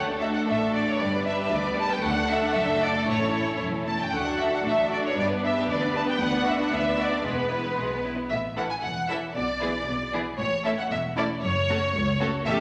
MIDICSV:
0, 0, Header, 1, 6, 480
1, 0, Start_track
1, 0, Key_signature, 2, "major"
1, 0, Tempo, 520833
1, 919, Time_signature, 2, 2, 24, 8
1, 5715, Key_signature, 3, "major"
1, 11614, End_track
2, 0, Start_track
2, 0, Title_t, "Violin section"
2, 0, Program_c, 0, 48
2, 195, Note_on_c, 0, 76, 38
2, 244, Note_off_c, 0, 76, 0
2, 319, Note_on_c, 0, 78, 43
2, 367, Note_off_c, 0, 78, 0
2, 442, Note_on_c, 0, 76, 39
2, 676, Note_off_c, 0, 76, 0
2, 682, Note_on_c, 0, 74, 42
2, 798, Note_off_c, 0, 74, 0
2, 814, Note_on_c, 0, 73, 41
2, 926, Note_off_c, 0, 73, 0
2, 927, Note_on_c, 0, 74, 48
2, 1160, Note_off_c, 0, 74, 0
2, 1160, Note_on_c, 0, 76, 47
2, 1271, Note_off_c, 0, 76, 0
2, 1282, Note_on_c, 0, 76, 47
2, 1393, Note_off_c, 0, 76, 0
2, 1403, Note_on_c, 0, 74, 45
2, 1633, Note_off_c, 0, 74, 0
2, 1640, Note_on_c, 0, 81, 61
2, 1749, Note_off_c, 0, 81, 0
2, 1764, Note_on_c, 0, 79, 50
2, 1873, Note_off_c, 0, 79, 0
2, 1877, Note_on_c, 0, 78, 68
2, 2109, Note_off_c, 0, 78, 0
2, 2118, Note_on_c, 0, 76, 58
2, 2230, Note_off_c, 0, 76, 0
2, 2239, Note_on_c, 0, 78, 57
2, 2351, Note_off_c, 0, 78, 0
2, 2358, Note_on_c, 0, 76, 59
2, 2591, Note_off_c, 0, 76, 0
2, 2603, Note_on_c, 0, 74, 56
2, 2837, Note_off_c, 0, 74, 0
2, 2843, Note_on_c, 0, 73, 46
2, 3318, Note_off_c, 0, 73, 0
2, 3569, Note_on_c, 0, 81, 42
2, 3680, Note_off_c, 0, 81, 0
2, 3698, Note_on_c, 0, 79, 45
2, 3812, Note_off_c, 0, 79, 0
2, 3823, Note_on_c, 0, 78, 56
2, 4053, Note_on_c, 0, 76, 49
2, 4055, Note_off_c, 0, 78, 0
2, 4170, Note_off_c, 0, 76, 0
2, 4183, Note_on_c, 0, 78, 47
2, 4228, Note_off_c, 0, 78, 0
2, 4309, Note_on_c, 0, 76, 47
2, 4534, Note_off_c, 0, 76, 0
2, 4535, Note_on_c, 0, 74, 48
2, 4581, Note_off_c, 0, 74, 0
2, 4653, Note_on_c, 0, 73, 46
2, 4767, Note_off_c, 0, 73, 0
2, 4770, Note_on_c, 0, 74, 53
2, 4844, Note_off_c, 0, 74, 0
2, 5013, Note_on_c, 0, 76, 51
2, 5126, Note_off_c, 0, 76, 0
2, 5138, Note_on_c, 0, 76, 49
2, 5183, Note_off_c, 0, 76, 0
2, 5253, Note_on_c, 0, 74, 47
2, 5479, Note_off_c, 0, 74, 0
2, 5492, Note_on_c, 0, 81, 62
2, 5537, Note_off_c, 0, 81, 0
2, 5613, Note_on_c, 0, 79, 53
2, 5721, Note_off_c, 0, 79, 0
2, 5723, Note_on_c, 0, 78, 68
2, 5956, Note_off_c, 0, 78, 0
2, 5963, Note_on_c, 0, 76, 59
2, 6077, Note_off_c, 0, 76, 0
2, 6097, Note_on_c, 0, 78, 56
2, 6202, Note_off_c, 0, 78, 0
2, 6211, Note_on_c, 0, 76, 57
2, 6442, Note_off_c, 0, 76, 0
2, 6461, Note_on_c, 0, 74, 58
2, 6689, Note_off_c, 0, 74, 0
2, 6694, Note_on_c, 0, 71, 52
2, 7406, Note_off_c, 0, 71, 0
2, 7662, Note_on_c, 0, 76, 49
2, 7736, Note_off_c, 0, 76, 0
2, 7907, Note_on_c, 0, 78, 45
2, 7954, Note_off_c, 0, 78, 0
2, 8020, Note_on_c, 0, 80, 49
2, 8068, Note_off_c, 0, 80, 0
2, 8132, Note_on_c, 0, 78, 49
2, 8371, Note_off_c, 0, 78, 0
2, 8375, Note_on_c, 0, 76, 50
2, 8449, Note_off_c, 0, 76, 0
2, 8615, Note_on_c, 0, 74, 48
2, 9324, Note_off_c, 0, 74, 0
2, 9579, Note_on_c, 0, 73, 58
2, 9800, Note_off_c, 0, 73, 0
2, 9817, Note_on_c, 0, 76, 50
2, 9864, Note_off_c, 0, 76, 0
2, 9943, Note_on_c, 0, 78, 55
2, 9990, Note_off_c, 0, 78, 0
2, 10058, Note_on_c, 0, 76, 51
2, 10132, Note_off_c, 0, 76, 0
2, 10295, Note_on_c, 0, 74, 57
2, 10369, Note_off_c, 0, 74, 0
2, 10531, Note_on_c, 0, 73, 60
2, 11233, Note_off_c, 0, 73, 0
2, 11479, Note_on_c, 0, 76, 69
2, 11552, Note_off_c, 0, 76, 0
2, 11614, End_track
3, 0, Start_track
3, 0, Title_t, "Violin section"
3, 0, Program_c, 1, 48
3, 0, Note_on_c, 1, 69, 31
3, 77, Note_on_c, 1, 62, 32
3, 198, Note_off_c, 1, 62, 0
3, 198, Note_on_c, 1, 66, 28
3, 312, Note_on_c, 1, 62, 29
3, 319, Note_off_c, 1, 66, 0
3, 436, Note_off_c, 1, 62, 0
3, 438, Note_on_c, 1, 57, 31
3, 555, Note_on_c, 1, 62, 31
3, 559, Note_off_c, 1, 57, 0
3, 673, Note_on_c, 1, 66, 31
3, 677, Note_off_c, 1, 62, 0
3, 788, Note_on_c, 1, 62, 29
3, 796, Note_off_c, 1, 66, 0
3, 879, Note_off_c, 1, 69, 0
3, 913, Note_off_c, 1, 62, 0
3, 917, Note_on_c, 1, 55, 35
3, 920, Note_on_c, 1, 71, 34
3, 1028, Note_off_c, 1, 55, 0
3, 1032, Note_on_c, 1, 59, 32
3, 1153, Note_off_c, 1, 59, 0
3, 1153, Note_on_c, 1, 62, 31
3, 1266, Note_on_c, 1, 67, 33
3, 1272, Note_off_c, 1, 62, 0
3, 1378, Note_on_c, 1, 62, 37
3, 1387, Note_off_c, 1, 67, 0
3, 1491, Note_on_c, 1, 59, 39
3, 1503, Note_off_c, 1, 62, 0
3, 1612, Note_on_c, 1, 55, 39
3, 1618, Note_off_c, 1, 59, 0
3, 1731, Note_on_c, 1, 59, 38
3, 1737, Note_off_c, 1, 55, 0
3, 1846, Note_off_c, 1, 71, 0
3, 1851, Note_on_c, 1, 57, 43
3, 1853, Note_on_c, 1, 69, 44
3, 1856, Note_off_c, 1, 59, 0
3, 1967, Note_off_c, 1, 57, 0
3, 1968, Note_on_c, 1, 62, 42
3, 2093, Note_on_c, 1, 66, 42
3, 2095, Note_off_c, 1, 62, 0
3, 2209, Note_on_c, 1, 62, 42
3, 2217, Note_off_c, 1, 66, 0
3, 2325, Note_on_c, 1, 57, 43
3, 2335, Note_off_c, 1, 62, 0
3, 2445, Note_off_c, 1, 57, 0
3, 2449, Note_on_c, 1, 62, 42
3, 2566, Note_on_c, 1, 66, 40
3, 2577, Note_off_c, 1, 62, 0
3, 2690, Note_on_c, 1, 62, 36
3, 2696, Note_off_c, 1, 66, 0
3, 2818, Note_on_c, 1, 57, 36
3, 2820, Note_off_c, 1, 62, 0
3, 2937, Note_off_c, 1, 57, 0
3, 2946, Note_on_c, 1, 61, 33
3, 3068, Note_on_c, 1, 64, 31
3, 3072, Note_off_c, 1, 61, 0
3, 3194, Note_off_c, 1, 64, 0
3, 3200, Note_on_c, 1, 61, 28
3, 3308, Note_on_c, 1, 57, 30
3, 3321, Note_off_c, 1, 61, 0
3, 3434, Note_on_c, 1, 61, 31
3, 3436, Note_off_c, 1, 57, 0
3, 3557, Note_on_c, 1, 64, 29
3, 3560, Note_off_c, 1, 61, 0
3, 3615, Note_off_c, 1, 69, 0
3, 3677, Note_on_c, 1, 61, 27
3, 3682, Note_off_c, 1, 64, 0
3, 3794, Note_on_c, 1, 69, 36
3, 3795, Note_on_c, 1, 57, 36
3, 3802, Note_off_c, 1, 61, 0
3, 3912, Note_off_c, 1, 57, 0
3, 3922, Note_on_c, 1, 62, 34
3, 4038, Note_on_c, 1, 66, 33
3, 4044, Note_off_c, 1, 62, 0
3, 4155, Note_on_c, 1, 62, 31
3, 4162, Note_off_c, 1, 66, 0
3, 4277, Note_on_c, 1, 57, 34
3, 4281, Note_off_c, 1, 62, 0
3, 4400, Note_on_c, 1, 62, 35
3, 4402, Note_off_c, 1, 57, 0
3, 4518, Note_on_c, 1, 66, 36
3, 4524, Note_off_c, 1, 62, 0
3, 4639, Note_on_c, 1, 62, 35
3, 4642, Note_off_c, 1, 66, 0
3, 4724, Note_off_c, 1, 69, 0
3, 4759, Note_on_c, 1, 71, 41
3, 4761, Note_on_c, 1, 55, 38
3, 4763, Note_off_c, 1, 62, 0
3, 4874, Note_off_c, 1, 55, 0
3, 4875, Note_on_c, 1, 59, 38
3, 4997, Note_on_c, 1, 62, 34
3, 4999, Note_off_c, 1, 59, 0
3, 5114, Note_on_c, 1, 67, 38
3, 5120, Note_off_c, 1, 62, 0
3, 5235, Note_on_c, 1, 62, 40
3, 5238, Note_off_c, 1, 67, 0
3, 5353, Note_on_c, 1, 59, 40
3, 5357, Note_off_c, 1, 62, 0
3, 5472, Note_on_c, 1, 55, 41
3, 5475, Note_off_c, 1, 59, 0
3, 5589, Note_on_c, 1, 59, 35
3, 5594, Note_off_c, 1, 55, 0
3, 5696, Note_off_c, 1, 59, 0
3, 5707, Note_on_c, 1, 59, 45
3, 5821, Note_off_c, 1, 59, 0
3, 5826, Note_on_c, 1, 62, 42
3, 5941, Note_on_c, 1, 66, 41
3, 5949, Note_off_c, 1, 62, 0
3, 6066, Note_off_c, 1, 66, 0
3, 6071, Note_on_c, 1, 62, 38
3, 6191, Note_off_c, 1, 62, 0
3, 6191, Note_on_c, 1, 59, 42
3, 6311, Note_off_c, 1, 59, 0
3, 6316, Note_on_c, 1, 62, 42
3, 6432, Note_on_c, 1, 66, 40
3, 6434, Note_off_c, 1, 62, 0
3, 6547, Note_on_c, 1, 62, 35
3, 6553, Note_off_c, 1, 66, 0
3, 6656, Note_off_c, 1, 71, 0
3, 6667, Note_on_c, 1, 71, 36
3, 6669, Note_on_c, 1, 56, 35
3, 6671, Note_off_c, 1, 62, 0
3, 6785, Note_off_c, 1, 56, 0
3, 6790, Note_on_c, 1, 59, 35
3, 6914, Note_on_c, 1, 64, 31
3, 6916, Note_off_c, 1, 59, 0
3, 7036, Note_on_c, 1, 59, 33
3, 7039, Note_off_c, 1, 64, 0
3, 7161, Note_off_c, 1, 59, 0
3, 7165, Note_on_c, 1, 56, 33
3, 7287, Note_off_c, 1, 56, 0
3, 7295, Note_on_c, 1, 59, 31
3, 7414, Note_off_c, 1, 59, 0
3, 7414, Note_on_c, 1, 64, 31
3, 7448, Note_off_c, 1, 71, 0
3, 7535, Note_off_c, 1, 64, 0
3, 7538, Note_on_c, 1, 59, 29
3, 7658, Note_off_c, 1, 59, 0
3, 7901, Note_on_c, 1, 69, 30
3, 7904, Note_on_c, 1, 64, 30
3, 7974, Note_off_c, 1, 69, 0
3, 7977, Note_off_c, 1, 64, 0
3, 8377, Note_on_c, 1, 64, 33
3, 8384, Note_on_c, 1, 69, 34
3, 8451, Note_off_c, 1, 64, 0
3, 8458, Note_off_c, 1, 69, 0
3, 8852, Note_on_c, 1, 68, 32
3, 8853, Note_on_c, 1, 64, 31
3, 8926, Note_off_c, 1, 68, 0
3, 8927, Note_off_c, 1, 64, 0
3, 9335, Note_on_c, 1, 68, 36
3, 9339, Note_on_c, 1, 64, 37
3, 9408, Note_off_c, 1, 68, 0
3, 9413, Note_off_c, 1, 64, 0
3, 9816, Note_on_c, 1, 69, 34
3, 9817, Note_on_c, 1, 64, 34
3, 9890, Note_off_c, 1, 69, 0
3, 9891, Note_off_c, 1, 64, 0
3, 10304, Note_on_c, 1, 64, 43
3, 10305, Note_on_c, 1, 69, 40
3, 10378, Note_off_c, 1, 64, 0
3, 10379, Note_off_c, 1, 69, 0
3, 10782, Note_on_c, 1, 66, 41
3, 10786, Note_on_c, 1, 69, 39
3, 10855, Note_off_c, 1, 66, 0
3, 10860, Note_off_c, 1, 69, 0
3, 11253, Note_on_c, 1, 69, 45
3, 11255, Note_on_c, 1, 66, 47
3, 11327, Note_off_c, 1, 69, 0
3, 11329, Note_off_c, 1, 66, 0
3, 11491, Note_on_c, 1, 67, 51
3, 11492, Note_on_c, 1, 69, 45
3, 11614, Note_off_c, 1, 67, 0
3, 11614, Note_off_c, 1, 69, 0
3, 11614, End_track
4, 0, Start_track
4, 0, Title_t, "Viola section"
4, 0, Program_c, 2, 48
4, 0, Note_on_c, 2, 57, 31
4, 0, Note_on_c, 2, 62, 34
4, 881, Note_off_c, 2, 57, 0
4, 923, Note_on_c, 2, 55, 36
4, 1827, Note_off_c, 2, 62, 0
4, 1860, Note_on_c, 2, 62, 44
4, 1862, Note_on_c, 2, 57, 48
4, 1866, Note_off_c, 2, 55, 0
4, 2806, Note_off_c, 2, 62, 0
4, 2827, Note_on_c, 2, 64, 36
4, 3585, Note_off_c, 2, 57, 0
4, 3621, Note_off_c, 2, 64, 0
4, 3803, Note_on_c, 2, 54, 38
4, 3806, Note_on_c, 2, 62, 40
4, 4728, Note_off_c, 2, 54, 0
4, 4772, Note_on_c, 2, 59, 41
4, 5678, Note_off_c, 2, 62, 0
4, 5711, Note_on_c, 2, 62, 47
4, 6653, Note_off_c, 2, 62, 0
4, 6661, Note_off_c, 2, 59, 0
4, 6672, Note_on_c, 2, 59, 37
4, 6673, Note_on_c, 2, 56, 37
4, 7467, Note_off_c, 2, 56, 0
4, 7467, Note_off_c, 2, 59, 0
4, 7897, Note_on_c, 2, 52, 32
4, 7898, Note_on_c, 2, 61, 33
4, 7971, Note_off_c, 2, 52, 0
4, 7972, Note_off_c, 2, 61, 0
4, 8383, Note_on_c, 2, 52, 32
4, 8383, Note_on_c, 2, 61, 31
4, 8457, Note_off_c, 2, 52, 0
4, 8457, Note_off_c, 2, 61, 0
4, 8866, Note_on_c, 2, 52, 34
4, 8867, Note_on_c, 2, 59, 35
4, 8940, Note_off_c, 2, 52, 0
4, 8941, Note_off_c, 2, 59, 0
4, 9345, Note_on_c, 2, 59, 34
4, 9347, Note_on_c, 2, 52, 34
4, 9419, Note_off_c, 2, 59, 0
4, 9421, Note_off_c, 2, 52, 0
4, 9815, Note_on_c, 2, 61, 35
4, 9818, Note_on_c, 2, 57, 37
4, 9889, Note_off_c, 2, 61, 0
4, 9892, Note_off_c, 2, 57, 0
4, 10290, Note_on_c, 2, 61, 41
4, 10291, Note_on_c, 2, 57, 39
4, 10364, Note_off_c, 2, 61, 0
4, 10365, Note_off_c, 2, 57, 0
4, 10773, Note_on_c, 2, 61, 43
4, 10775, Note_on_c, 2, 57, 42
4, 10847, Note_off_c, 2, 61, 0
4, 10849, Note_off_c, 2, 57, 0
4, 11247, Note_on_c, 2, 57, 43
4, 11248, Note_on_c, 2, 61, 43
4, 11320, Note_off_c, 2, 57, 0
4, 11322, Note_off_c, 2, 61, 0
4, 11482, Note_on_c, 2, 61, 50
4, 11485, Note_on_c, 2, 57, 53
4, 11614, Note_off_c, 2, 57, 0
4, 11614, Note_off_c, 2, 61, 0
4, 11614, End_track
5, 0, Start_track
5, 0, Title_t, "Cello section"
5, 0, Program_c, 3, 48
5, 0, Note_on_c, 3, 38, 40
5, 339, Note_off_c, 3, 38, 0
5, 443, Note_on_c, 3, 45, 35
5, 820, Note_off_c, 3, 45, 0
5, 923, Note_on_c, 3, 43, 44
5, 1295, Note_off_c, 3, 43, 0
5, 1390, Note_on_c, 3, 38, 46
5, 1764, Note_off_c, 3, 38, 0
5, 1862, Note_on_c, 3, 38, 61
5, 2241, Note_off_c, 3, 38, 0
5, 2337, Note_on_c, 3, 42, 52
5, 2722, Note_off_c, 3, 42, 0
5, 2822, Note_on_c, 3, 45, 45
5, 3214, Note_off_c, 3, 45, 0
5, 3320, Note_on_c, 3, 42, 36
5, 3547, Note_off_c, 3, 42, 0
5, 3563, Note_on_c, 3, 40, 30
5, 3685, Note_off_c, 3, 40, 0
5, 3686, Note_on_c, 3, 42, 28
5, 3734, Note_off_c, 3, 42, 0
5, 3805, Note_on_c, 3, 50, 47
5, 4186, Note_off_c, 3, 50, 0
5, 4278, Note_on_c, 3, 45, 39
5, 4661, Note_off_c, 3, 45, 0
5, 4768, Note_on_c, 3, 43, 47
5, 5144, Note_off_c, 3, 43, 0
5, 5246, Note_on_c, 3, 38, 49
5, 5618, Note_off_c, 3, 38, 0
5, 5710, Note_on_c, 3, 38, 58
5, 6088, Note_off_c, 3, 38, 0
5, 6190, Note_on_c, 3, 38, 50
5, 6572, Note_off_c, 3, 38, 0
5, 6674, Note_on_c, 3, 40, 45
5, 7061, Note_off_c, 3, 40, 0
5, 7161, Note_on_c, 3, 47, 40
5, 7552, Note_off_c, 3, 47, 0
5, 7658, Note_on_c, 3, 45, 43
5, 8039, Note_off_c, 3, 45, 0
5, 8144, Note_on_c, 3, 40, 40
5, 8522, Note_off_c, 3, 40, 0
5, 8628, Note_on_c, 3, 47, 45
5, 9005, Note_off_c, 3, 47, 0
5, 9103, Note_on_c, 3, 47, 41
5, 9479, Note_off_c, 3, 47, 0
5, 9577, Note_on_c, 3, 45, 52
5, 9955, Note_off_c, 3, 45, 0
5, 10060, Note_on_c, 3, 40, 44
5, 10438, Note_off_c, 3, 40, 0
5, 10540, Note_on_c, 3, 42, 58
5, 10915, Note_off_c, 3, 42, 0
5, 11010, Note_on_c, 3, 37, 53
5, 11385, Note_off_c, 3, 37, 0
5, 11482, Note_on_c, 3, 40, 54
5, 11556, Note_off_c, 3, 40, 0
5, 11614, End_track
6, 0, Start_track
6, 0, Title_t, "Double bass section"
6, 0, Program_c, 4, 48
6, 0, Note_on_c, 4, 38, 38
6, 339, Note_off_c, 4, 38, 0
6, 437, Note_on_c, 4, 33, 41
6, 817, Note_off_c, 4, 33, 0
6, 918, Note_on_c, 4, 31, 42
6, 1292, Note_off_c, 4, 31, 0
6, 1390, Note_on_c, 4, 38, 48
6, 1764, Note_off_c, 4, 38, 0
6, 1858, Note_on_c, 4, 38, 56
6, 2239, Note_off_c, 4, 38, 0
6, 2339, Note_on_c, 4, 30, 56
6, 2723, Note_off_c, 4, 30, 0
6, 2825, Note_on_c, 4, 33, 45
6, 3215, Note_off_c, 4, 33, 0
6, 3310, Note_on_c, 4, 28, 38
6, 3700, Note_off_c, 4, 28, 0
6, 3802, Note_on_c, 4, 38, 43
6, 4184, Note_off_c, 4, 38, 0
6, 4281, Note_on_c, 4, 33, 44
6, 4663, Note_off_c, 4, 33, 0
6, 4761, Note_on_c, 4, 31, 46
6, 5140, Note_off_c, 4, 31, 0
6, 5236, Note_on_c, 4, 38, 51
6, 5613, Note_off_c, 4, 38, 0
6, 5707, Note_on_c, 4, 38, 55
6, 6087, Note_off_c, 4, 38, 0
6, 6185, Note_on_c, 4, 38, 53
6, 6569, Note_off_c, 4, 38, 0
6, 6674, Note_on_c, 4, 28, 45
6, 7061, Note_off_c, 4, 28, 0
6, 7161, Note_on_c, 4, 35, 43
6, 7552, Note_off_c, 4, 35, 0
6, 7656, Note_on_c, 4, 33, 45
6, 8038, Note_off_c, 4, 33, 0
6, 8143, Note_on_c, 4, 28, 46
6, 8521, Note_off_c, 4, 28, 0
6, 8621, Note_on_c, 4, 35, 46
6, 9001, Note_off_c, 4, 35, 0
6, 9104, Note_on_c, 4, 35, 48
6, 9480, Note_off_c, 4, 35, 0
6, 9575, Note_on_c, 4, 33, 51
6, 9954, Note_off_c, 4, 33, 0
6, 10058, Note_on_c, 4, 28, 49
6, 10437, Note_off_c, 4, 28, 0
6, 10533, Note_on_c, 4, 30, 54
6, 10911, Note_off_c, 4, 30, 0
6, 11013, Note_on_c, 4, 37, 60
6, 11386, Note_off_c, 4, 37, 0
6, 11485, Note_on_c, 4, 28, 58
6, 11559, Note_off_c, 4, 28, 0
6, 11614, End_track
0, 0, End_of_file